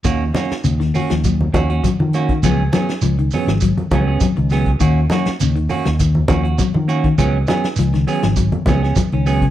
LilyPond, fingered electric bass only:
\new Staff \with { instrumentName = "Fingered electric bass" } { \clef bass \time 4/4 \key ees \minor \tempo 4 = 101 ees,8 r8 ees,8 r16 ees,8. ees,8 r16 ees8. | des,8 r8 des,8 r16 aes,,8 r16 des,8 r16 des,8. | ees,8 r8 ees,8 r16 ees,8. ees,8 r16 ees8. | des,8 r8 des,8 r16 aes,,8 r16 des,8 r16 des,8. | }